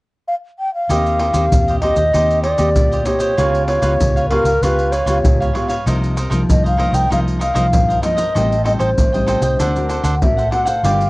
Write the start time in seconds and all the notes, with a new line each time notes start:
0.28 F5
0.59 G5
0.74 F5
0.89 D#2 D#3 A#3 C4 D#4 G4 C5 D#5, pandeiro, maracas, surdo
1.06 pandeiro, maracas
1.19 D#4 G4 C5 D#5, pandeiro
1.33 D#2 A#3 C4 D#4 G4 C5 D#5, pandeiro, maracas
1.51 D#2 A#2, pandeiro, maracas, surdo
1.68 G4 C5 D#5, pandeiro, maracas
1.81 A#3 C4 D#4 G4 C5 D#5, pandeiro
1.96 D#2 G4 C5 D#5, pandeiro, maracas
2.13 D#2 D#3 A#3 C4 D#4 G4 C5 D#5, pandeiro, maracas, surdo
2.30 pandeiro, maracas
2.43 D#4 G4 C5 D5 D#5, pandeiro
2.58 D#2 A#3 C4 D#4 G4 C5 D#5, pandeiro, maracas
2.76 D2 A#2, pandeiro, maracas, surdo
2.91 G4 C5 D#5, pandeiro, maracas
3.05 A#3 C4 D#4 G4 C5 C#5 D#5, pandeiro, maracas
3.19 G4 C5 D#5, pandeiro, maracas
3.37 C#2 C#3 B3 F4 G4 B4 C#5 F5, pandeiro, maracas, surdo
3.55 pandeiro, maracas
3.67 F4 B4 C#5 F5, pandeiro
3.82 C#2 B3 F4 G4 B4 C#5 F5, pandeiro, maracas
4.00 C#2 G#2, pandeiro, maracas, surdo
4.16 B4 C#5 F5, pandeiro, maracas
4.29 B3 F4 G4 A#4 B4 C#5 F5, pandeiro
4.44 C#2 B4 C#5 F5, pandeiro, maracas
4.61 C#2 C#3 B3 F4 G4 B4 C#5 F5, pandeiro, maracas, surdo
4.79 pandeiro, maracas
4.92 F4 B4 C#5 F5, pandeiro, maracas
5.06 C#2 B3 F4 G4 B4 C#5 F5, pandeiro, maracas
5.24 C#2 G#2, pandeiro, maracas, surdo
5.41 B4 C#5 F5, pandeiro, maracas
5.54 B3 F4 G4 B4 C#5 F5, pandeiro
5.68 B4 C#5 F5, pandeiro, maracas
5.86 C2 C3 F3 A#3 D#4 A#4 C5 D#5, pandeiro, maracas, surdo
6.04 pandeiro, maracas
6.16 D#4 A#4 C5 D#5, pandeiro, maracas
6.30 C2 F3 A#3 D#4 A#4 C5 D#5, pandeiro, maracas
6.49 C2 G2 D#5, pandeiro, maracas, surdo
6.64 A#4 C5 D#5 F5, pandeiro, maracas
6.77 F3 A#3 D#4 A#4 C5 D#5, pandeiro
6.92 C2 A#4 C5 D#5 G5, pandeiro, maracas
7.10 C2 C3 F3 A#3 D#4 A#4 C5 D#5 F5, pandeiro, maracas, surdo
7.28 pandeiro, maracas
7.39 D#4 A#4 C5 D#5 F5, pandeiro, maracas
7.54 C2 F3 A#3 D#4 A#4 C5 D#5, pandeiro, maracas
7.73 A#1 G2, pandeiro, maracas, surdo
7.89 A#4 C5 D#5, pandeiro, maracas
8.02 F3 A#3 D#4 A#4 C5 D#5, pandeiro, maracas
8.17 A#4 C5 D#5, pandeiro, maracas
8.34 A1 A2 G3 C4 D#4 A4 C5 D#5 G5, pandeiro, maracas, surdo
8.52 pandeiro, maracas
8.64 G3 C4 D#4 A4 C5 D#5 G5, pandeiro
8.79 A1 A4 C5 D#5 G5, pandeiro, maracas
8.98 A1 A2, pandeiro, maracas, surdo
9.13 G3 C4 D#4 C5 D#5 G5, pandeiro, maracas
9.26 A4 C5 D#5 G5, pandeiro, maracas
9.41 C2 C5 D#5 G5, pandeiro, maracas
9.58 D2 D3 C4 D4 F#4 A4 A#4 C5 F#5, pandeiro, maracas, surdo
9.76 C4 F#4 A#4, pandeiro, maracas
9.89 D4 A4 C5 F#5, pandeiro, maracas
10.03 D2 D4 A4 C5 F#5, pandeiro, maracas
10.15 F#5
10.21 A1 A2 C4 F#4 A#4 E5, pandeiro, maracas, surdo
10.37 A4 C5 F#5, pandeiro, maracas
10.51 C4 D4 F#4 A4 A#4 C5 F#5, pandeiro
10.65 A4 C5 F5 F#5, pandeiro, maracas
10.83 G1 G3 D4 F4 A#4 D5 G5, pandeiro, maracas, surdo
11.01 pandeiro, maracas